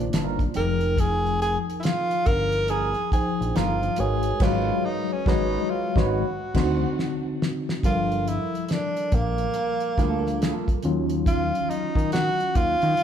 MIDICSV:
0, 0, Header, 1, 7, 480
1, 0, Start_track
1, 0, Tempo, 857143
1, 547, Time_signature, 4, 2, 24, 8
1, 7298, End_track
2, 0, Start_track
2, 0, Title_t, "Clean electric guitar"
2, 0, Program_c, 0, 27
2, 77, Note_on_c, 0, 63, 66
2, 80, Note_on_c, 0, 65, 68
2, 85, Note_on_c, 0, 70, 70
2, 212, Note_off_c, 0, 63, 0
2, 213, Note_off_c, 0, 65, 0
2, 216, Note_off_c, 0, 70, 0
2, 1510, Note_on_c, 0, 63, 72
2, 1512, Note_on_c, 0, 68, 78
2, 1515, Note_on_c, 0, 70, 82
2, 1614, Note_off_c, 0, 63, 0
2, 1615, Note_off_c, 0, 68, 0
2, 1616, Note_off_c, 0, 70, 0
2, 1990, Note_on_c, 0, 63, 65
2, 1992, Note_on_c, 0, 68, 80
2, 1996, Note_on_c, 0, 70, 86
2, 2093, Note_off_c, 0, 63, 0
2, 2095, Note_off_c, 0, 68, 0
2, 2096, Note_off_c, 0, 70, 0
2, 2474, Note_on_c, 0, 61, 103
2, 2476, Note_on_c, 0, 66, 104
2, 2477, Note_on_c, 0, 71, 101
2, 2644, Note_off_c, 0, 61, 0
2, 2646, Note_off_c, 0, 66, 0
2, 2646, Note_off_c, 0, 71, 0
2, 2949, Note_on_c, 0, 61, 101
2, 2953, Note_on_c, 0, 66, 93
2, 2958, Note_on_c, 0, 71, 110
2, 3121, Note_off_c, 0, 61, 0
2, 3124, Note_off_c, 0, 66, 0
2, 3127, Note_off_c, 0, 71, 0
2, 3343, Note_on_c, 0, 61, 105
2, 3345, Note_on_c, 0, 66, 101
2, 3349, Note_on_c, 0, 71, 94
2, 3493, Note_off_c, 0, 61, 0
2, 3495, Note_off_c, 0, 66, 0
2, 3497, Note_off_c, 0, 71, 0
2, 3670, Note_on_c, 0, 63, 95
2, 3673, Note_on_c, 0, 66, 84
2, 3675, Note_on_c, 0, 72, 101
2, 3842, Note_off_c, 0, 63, 0
2, 3844, Note_off_c, 0, 66, 0
2, 3845, Note_off_c, 0, 72, 0
2, 5591, Note_on_c, 0, 58, 71
2, 5591, Note_on_c, 0, 65, 77
2, 5595, Note_on_c, 0, 69, 81
2, 5729, Note_off_c, 0, 58, 0
2, 5729, Note_off_c, 0, 65, 0
2, 5731, Note_off_c, 0, 69, 0
2, 5834, Note_on_c, 0, 58, 63
2, 5840, Note_on_c, 0, 65, 76
2, 5842, Note_on_c, 0, 69, 89
2, 5971, Note_off_c, 0, 58, 0
2, 5973, Note_off_c, 0, 65, 0
2, 5974, Note_off_c, 0, 69, 0
2, 7298, End_track
3, 0, Start_track
3, 0, Title_t, "Tine electric piano"
3, 0, Program_c, 1, 4
3, 0, Control_c, 1, 64, 127
3, 0, Note_on_c, 1, 48, 72
3, 0, Note_on_c, 1, 51, 60
3, 0, Note_on_c, 1, 58, 60
3, 0, Note_on_c, 1, 65, 65
3, 0, Note_on_c, 1, 72, 57
3, 0, Note_on_c, 1, 74, 78
3, 308, Note_off_c, 1, 48, 0
3, 308, Note_on_c, 1, 53, 86
3, 309, Note_off_c, 1, 58, 0
3, 310, Note_off_c, 1, 51, 0
3, 311, Note_on_c, 1, 63, 68
3, 312, Note_off_c, 1, 65, 0
3, 313, Control_c, 1, 64, 0
3, 313, Note_on_c, 1, 79, 76
3, 315, Note_off_c, 1, 72, 0
3, 318, Note_on_c, 1, 68, 81
3, 320, Note_on_c, 1, 70, 96
3, 331, Note_off_c, 1, 74, 0
3, 408, Control_c, 1, 64, 127
3, 1187, Note_off_c, 1, 53, 0
3, 1189, Note_off_c, 1, 63, 0
3, 1190, Note_off_c, 1, 79, 0
3, 1192, Note_off_c, 1, 68, 0
3, 1193, Note_off_c, 1, 70, 0
3, 1750, Note_on_c, 1, 53, 70
3, 1753, Note_on_c, 1, 63, 65
3, 1754, Note_on_c, 1, 79, 65
3, 1759, Note_on_c, 1, 68, 58
3, 1759, Note_on_c, 1, 72, 75
3, 2228, Note_off_c, 1, 53, 0
3, 2228, Note_on_c, 1, 56, 82
3, 2230, Note_off_c, 1, 63, 0
3, 2230, Note_off_c, 1, 79, 0
3, 2233, Note_off_c, 1, 68, 0
3, 2233, Note_off_c, 1, 72, 0
3, 2234, Control_c, 1, 64, 0
3, 2234, Note_on_c, 1, 66, 76
3, 2234, Note_on_c, 1, 70, 78
3, 2238, Note_on_c, 1, 71, 69
3, 2240, Note_on_c, 1, 73, 94
3, 2329, Control_c, 1, 64, 127
3, 2458, Note_off_c, 1, 56, 0
3, 2465, Note_on_c, 1, 56, 99
3, 2467, Note_off_c, 1, 71, 0
3, 2467, Note_on_c, 1, 54, 112
3, 2469, Note_off_c, 1, 73, 0
3, 2470, Note_off_c, 1, 66, 0
3, 2471, Note_off_c, 1, 70, 0
3, 2471, Note_on_c, 1, 68, 107
3, 2474, Note_on_c, 1, 71, 104
3, 2476, Note_on_c, 1, 73, 97
3, 2639, Note_off_c, 1, 56, 0
3, 2640, Note_off_c, 1, 54, 0
3, 2643, Note_off_c, 1, 68, 0
3, 2644, Note_off_c, 1, 71, 0
3, 2646, Note_off_c, 1, 73, 0
3, 2948, Note_on_c, 1, 56, 85
3, 2951, Note_on_c, 1, 66, 92
3, 2954, Note_on_c, 1, 68, 90
3, 2957, Note_on_c, 1, 71, 94
3, 2959, Note_on_c, 1, 73, 105
3, 3121, Note_off_c, 1, 56, 0
3, 3123, Note_off_c, 1, 66, 0
3, 3125, Note_off_c, 1, 68, 0
3, 3126, Note_off_c, 1, 71, 0
3, 3127, Note_off_c, 1, 73, 0
3, 3337, Note_on_c, 1, 56, 97
3, 3340, Note_on_c, 1, 66, 97
3, 3346, Note_on_c, 1, 71, 101
3, 3351, Note_on_c, 1, 73, 98
3, 3434, Control_c, 1, 64, 0
3, 3490, Note_off_c, 1, 56, 0
3, 3492, Note_off_c, 1, 66, 0
3, 3495, Note_off_c, 1, 71, 0
3, 3498, Note_off_c, 1, 73, 0
3, 3533, Control_c, 1, 64, 127
3, 3663, Note_on_c, 1, 50, 92
3, 3667, Note_on_c, 1, 60, 92
3, 3671, Note_on_c, 1, 63, 89
3, 3676, Note_on_c, 1, 66, 87
3, 3838, Note_off_c, 1, 50, 0
3, 3840, Note_off_c, 1, 60, 0
3, 3842, Note_off_c, 1, 63, 0
3, 3845, Note_off_c, 1, 66, 0
3, 4391, Note_on_c, 1, 55, 68
3, 4393, Control_c, 1, 64, 0
3, 4394, Note_on_c, 1, 53, 67
3, 4397, Note_on_c, 1, 69, 59
3, 4398, Note_on_c, 1, 70, 81
3, 4496, Control_c, 1, 64, 127
3, 5269, Note_off_c, 1, 55, 0
3, 5270, Note_off_c, 1, 53, 0
3, 5272, Note_off_c, 1, 69, 0
3, 5272, Note_off_c, 1, 70, 0
3, 5588, Note_on_c, 1, 55, 71
3, 5590, Note_on_c, 1, 65, 67
3, 5596, Note_on_c, 1, 69, 58
3, 5596, Note_on_c, 1, 70, 74
3, 6066, Note_on_c, 1, 51, 96
3, 6067, Note_off_c, 1, 55, 0
3, 6068, Note_off_c, 1, 65, 0
3, 6071, Note_off_c, 1, 69, 0
3, 6071, Note_on_c, 1, 61, 90
3, 6072, Note_off_c, 1, 70, 0
3, 6073, Control_c, 1, 64, 0
3, 6074, Note_on_c, 1, 65, 93
3, 6076, Note_on_c, 1, 54, 113
3, 6163, Control_c, 1, 64, 127
3, 6946, Note_off_c, 1, 51, 0
3, 6949, Note_off_c, 1, 61, 0
3, 6950, Note_off_c, 1, 65, 0
3, 6951, Note_off_c, 1, 54, 0
3, 7298, End_track
4, 0, Start_track
4, 0, Title_t, "Tenor saxophone"
4, 0, Program_c, 2, 66
4, 0, Note_on_c, 2, 62, 78
4, 76, Note_off_c, 2, 62, 0
4, 317, Note_on_c, 2, 70, 97
4, 560, Note_on_c, 2, 68, 112
4, 568, Note_off_c, 2, 70, 0
4, 791, Note_off_c, 2, 68, 0
4, 794, Note_on_c, 2, 68, 94
4, 884, Note_off_c, 2, 68, 0
4, 1006, Note_on_c, 2, 64, 71
4, 1033, Note_on_c, 2, 65, 101
4, 1042, Note_off_c, 2, 64, 0
4, 1270, Note_on_c, 2, 70, 121
4, 1279, Note_off_c, 2, 65, 0
4, 1513, Note_on_c, 2, 68, 104
4, 1521, Note_off_c, 2, 70, 0
4, 1750, Note_off_c, 2, 68, 0
4, 1753, Note_on_c, 2, 68, 90
4, 1995, Note_on_c, 2, 65, 89
4, 2003, Note_off_c, 2, 68, 0
4, 2239, Note_on_c, 2, 68, 91
4, 2248, Note_off_c, 2, 65, 0
4, 2479, Note_on_c, 2, 65, 90
4, 2488, Note_off_c, 2, 68, 0
4, 2720, Note_on_c, 2, 63, 80
4, 2728, Note_off_c, 2, 65, 0
4, 2870, Note_on_c, 2, 61, 81
4, 2878, Note_off_c, 2, 63, 0
4, 2957, Note_on_c, 2, 63, 94
4, 2966, Note_off_c, 2, 61, 0
4, 3195, Note_on_c, 2, 65, 91
4, 3204, Note_off_c, 2, 63, 0
4, 3341, Note_off_c, 2, 65, 0
4, 3351, Note_on_c, 2, 66, 77
4, 4131, Note_off_c, 2, 66, 0
4, 4399, Note_on_c, 2, 65, 88
4, 4639, Note_on_c, 2, 64, 86
4, 4648, Note_off_c, 2, 65, 0
4, 4851, Note_off_c, 2, 64, 0
4, 4851, Note_on_c, 2, 64, 63
4, 4884, Note_on_c, 2, 62, 98
4, 4892, Note_off_c, 2, 64, 0
4, 5124, Note_on_c, 2, 58, 96
4, 5132, Note_off_c, 2, 62, 0
4, 6075, Note_off_c, 2, 58, 0
4, 6314, Note_on_c, 2, 65, 92
4, 6552, Note_on_c, 2, 63, 87
4, 6560, Note_off_c, 2, 65, 0
4, 6789, Note_off_c, 2, 63, 0
4, 6792, Note_on_c, 2, 66, 110
4, 7032, Note_on_c, 2, 65, 117
4, 7040, Note_off_c, 2, 66, 0
4, 7298, Note_off_c, 2, 65, 0
4, 7298, End_track
5, 0, Start_track
5, 0, Title_t, "Analog synth bass"
5, 0, Program_c, 3, 38
5, 77, Note_on_c, 3, 31, 90
5, 263, Note_off_c, 3, 31, 0
5, 318, Note_on_c, 3, 29, 96
5, 884, Note_off_c, 3, 29, 0
5, 1274, Note_on_c, 3, 31, 94
5, 1652, Note_off_c, 3, 31, 0
5, 1752, Note_on_c, 3, 34, 48
5, 1811, Note_off_c, 3, 34, 0
5, 1907, Note_on_c, 3, 34, 76
5, 1974, Note_off_c, 3, 34, 0
5, 1998, Note_on_c, 3, 31, 99
5, 2184, Note_off_c, 3, 31, 0
5, 2237, Note_on_c, 3, 32, 102
5, 2424, Note_off_c, 3, 32, 0
5, 2471, Note_on_c, 3, 32, 108
5, 2643, Note_off_c, 3, 32, 0
5, 2949, Note_on_c, 3, 32, 115
5, 3122, Note_off_c, 3, 32, 0
5, 3340, Note_on_c, 3, 32, 118
5, 3492, Note_off_c, 3, 32, 0
5, 3671, Note_on_c, 3, 38, 112
5, 3842, Note_off_c, 3, 38, 0
5, 4391, Note_on_c, 3, 31, 108
5, 4699, Note_off_c, 3, 31, 0
5, 5113, Note_on_c, 3, 34, 97
5, 5301, Note_off_c, 3, 34, 0
5, 5591, Note_on_c, 3, 38, 92
5, 5899, Note_off_c, 3, 38, 0
5, 6076, Note_on_c, 3, 39, 94
5, 6453, Note_off_c, 3, 39, 0
5, 6558, Note_on_c, 3, 51, 49
5, 6615, Note_off_c, 3, 51, 0
5, 6699, Note_on_c, 3, 51, 93
5, 6888, Note_off_c, 3, 51, 0
5, 7035, Note_on_c, 3, 39, 88
5, 7151, Note_off_c, 3, 39, 0
5, 7184, Note_on_c, 3, 51, 113
5, 7253, Note_off_c, 3, 51, 0
5, 7298, End_track
6, 0, Start_track
6, 0, Title_t, "Muted clean electric guitar strokes"
6, 5351, Note_on_c, 9, 29, 36
6, 5407, Note_off_c, 9, 29, 0
6, 7272, Note_on_c, 9, 29, 39
6, 7298, Note_off_c, 9, 29, 0
6, 7298, End_track
7, 0, Start_track
7, 0, Title_t, "Drums"
7, 0, Note_on_c, 9, 42, 47
7, 54, Note_off_c, 9, 42, 0
7, 73, Note_on_c, 9, 42, 93
7, 78, Note_on_c, 9, 38, 96
7, 129, Note_off_c, 9, 42, 0
7, 134, Note_off_c, 9, 38, 0
7, 220, Note_on_c, 9, 36, 81
7, 225, Note_on_c, 9, 42, 32
7, 276, Note_off_c, 9, 36, 0
7, 281, Note_off_c, 9, 42, 0
7, 303, Note_on_c, 9, 42, 76
7, 359, Note_off_c, 9, 42, 0
7, 452, Note_on_c, 9, 42, 50
7, 508, Note_off_c, 9, 42, 0
7, 546, Note_on_c, 9, 36, 97
7, 551, Note_on_c, 9, 42, 87
7, 602, Note_off_c, 9, 36, 0
7, 607, Note_off_c, 9, 42, 0
7, 708, Note_on_c, 9, 42, 30
7, 764, Note_off_c, 9, 42, 0
7, 794, Note_on_c, 9, 42, 63
7, 850, Note_off_c, 9, 42, 0
7, 950, Note_on_c, 9, 42, 47
7, 1006, Note_off_c, 9, 42, 0
7, 1024, Note_on_c, 9, 42, 83
7, 1037, Note_on_c, 9, 38, 109
7, 1080, Note_off_c, 9, 42, 0
7, 1093, Note_off_c, 9, 38, 0
7, 1181, Note_on_c, 9, 42, 37
7, 1237, Note_off_c, 9, 42, 0
7, 1266, Note_on_c, 9, 42, 76
7, 1269, Note_on_c, 9, 36, 106
7, 1322, Note_off_c, 9, 42, 0
7, 1325, Note_off_c, 9, 36, 0
7, 1413, Note_on_c, 9, 42, 41
7, 1469, Note_off_c, 9, 42, 0
7, 1501, Note_on_c, 9, 42, 72
7, 1557, Note_off_c, 9, 42, 0
7, 1649, Note_on_c, 9, 42, 32
7, 1705, Note_off_c, 9, 42, 0
7, 1746, Note_on_c, 9, 36, 100
7, 1753, Note_on_c, 9, 42, 70
7, 1802, Note_off_c, 9, 36, 0
7, 1809, Note_off_c, 9, 42, 0
7, 1915, Note_on_c, 9, 42, 47
7, 1971, Note_off_c, 9, 42, 0
7, 1992, Note_on_c, 9, 42, 83
7, 1997, Note_on_c, 9, 38, 100
7, 2048, Note_off_c, 9, 42, 0
7, 2053, Note_off_c, 9, 38, 0
7, 2143, Note_on_c, 9, 42, 30
7, 2199, Note_off_c, 9, 42, 0
7, 2220, Note_on_c, 9, 42, 85
7, 2276, Note_off_c, 9, 42, 0
7, 2368, Note_on_c, 9, 42, 59
7, 2424, Note_off_c, 9, 42, 0
7, 2463, Note_on_c, 9, 49, 87
7, 2465, Note_on_c, 9, 36, 102
7, 2473, Note_on_c, 9, 38, 96
7, 2519, Note_off_c, 9, 49, 0
7, 2521, Note_off_c, 9, 36, 0
7, 2529, Note_off_c, 9, 38, 0
7, 2946, Note_on_c, 9, 36, 106
7, 2954, Note_on_c, 9, 38, 96
7, 3002, Note_off_c, 9, 36, 0
7, 3010, Note_off_c, 9, 38, 0
7, 3336, Note_on_c, 9, 36, 106
7, 3344, Note_on_c, 9, 38, 95
7, 3392, Note_off_c, 9, 36, 0
7, 3400, Note_off_c, 9, 38, 0
7, 3665, Note_on_c, 9, 49, 79
7, 3666, Note_on_c, 9, 36, 92
7, 3675, Note_on_c, 9, 38, 106
7, 3721, Note_off_c, 9, 49, 0
7, 3722, Note_off_c, 9, 36, 0
7, 3731, Note_off_c, 9, 38, 0
7, 3915, Note_on_c, 9, 38, 85
7, 3971, Note_off_c, 9, 38, 0
7, 4156, Note_on_c, 9, 38, 111
7, 4212, Note_off_c, 9, 38, 0
7, 4307, Note_on_c, 9, 38, 92
7, 4363, Note_off_c, 9, 38, 0
7, 4387, Note_on_c, 9, 36, 93
7, 4392, Note_on_c, 9, 42, 85
7, 4443, Note_off_c, 9, 36, 0
7, 4448, Note_off_c, 9, 42, 0
7, 4546, Note_on_c, 9, 42, 41
7, 4602, Note_off_c, 9, 42, 0
7, 4634, Note_on_c, 9, 42, 63
7, 4690, Note_off_c, 9, 42, 0
7, 4788, Note_on_c, 9, 42, 49
7, 4844, Note_off_c, 9, 42, 0
7, 4864, Note_on_c, 9, 42, 68
7, 4876, Note_on_c, 9, 38, 94
7, 4920, Note_off_c, 9, 42, 0
7, 4932, Note_off_c, 9, 38, 0
7, 5021, Note_on_c, 9, 42, 46
7, 5077, Note_off_c, 9, 42, 0
7, 5106, Note_on_c, 9, 42, 63
7, 5109, Note_on_c, 9, 36, 108
7, 5162, Note_off_c, 9, 42, 0
7, 5165, Note_off_c, 9, 36, 0
7, 5254, Note_on_c, 9, 42, 40
7, 5310, Note_off_c, 9, 42, 0
7, 5341, Note_on_c, 9, 42, 72
7, 5397, Note_off_c, 9, 42, 0
7, 5490, Note_on_c, 9, 42, 47
7, 5546, Note_off_c, 9, 42, 0
7, 5587, Note_on_c, 9, 36, 97
7, 5594, Note_on_c, 9, 42, 72
7, 5597, Note_on_c, 9, 38, 29
7, 5643, Note_off_c, 9, 36, 0
7, 5650, Note_off_c, 9, 42, 0
7, 5653, Note_off_c, 9, 38, 0
7, 5746, Note_on_c, 9, 38, 37
7, 5757, Note_on_c, 9, 42, 42
7, 5802, Note_off_c, 9, 38, 0
7, 5813, Note_off_c, 9, 42, 0
7, 5834, Note_on_c, 9, 42, 80
7, 5839, Note_on_c, 9, 38, 99
7, 5890, Note_off_c, 9, 42, 0
7, 5895, Note_off_c, 9, 38, 0
7, 5980, Note_on_c, 9, 36, 90
7, 5985, Note_on_c, 9, 42, 45
7, 6036, Note_off_c, 9, 36, 0
7, 6041, Note_off_c, 9, 42, 0
7, 6062, Note_on_c, 9, 42, 71
7, 6118, Note_off_c, 9, 42, 0
7, 6213, Note_on_c, 9, 42, 52
7, 6269, Note_off_c, 9, 42, 0
7, 6307, Note_on_c, 9, 36, 102
7, 6311, Note_on_c, 9, 42, 82
7, 6363, Note_off_c, 9, 36, 0
7, 6367, Note_off_c, 9, 42, 0
7, 6468, Note_on_c, 9, 42, 40
7, 6524, Note_off_c, 9, 42, 0
7, 6556, Note_on_c, 9, 42, 61
7, 6612, Note_off_c, 9, 42, 0
7, 6694, Note_on_c, 9, 36, 94
7, 6712, Note_on_c, 9, 42, 46
7, 6750, Note_off_c, 9, 36, 0
7, 6768, Note_off_c, 9, 42, 0
7, 6788, Note_on_c, 9, 42, 80
7, 6801, Note_on_c, 9, 38, 104
7, 6844, Note_off_c, 9, 42, 0
7, 6857, Note_off_c, 9, 38, 0
7, 6946, Note_on_c, 9, 42, 42
7, 7002, Note_off_c, 9, 42, 0
7, 7030, Note_on_c, 9, 42, 67
7, 7031, Note_on_c, 9, 36, 104
7, 7086, Note_off_c, 9, 42, 0
7, 7087, Note_off_c, 9, 36, 0
7, 7178, Note_on_c, 9, 42, 44
7, 7234, Note_off_c, 9, 42, 0
7, 7265, Note_on_c, 9, 42, 72
7, 7298, Note_off_c, 9, 42, 0
7, 7298, End_track
0, 0, End_of_file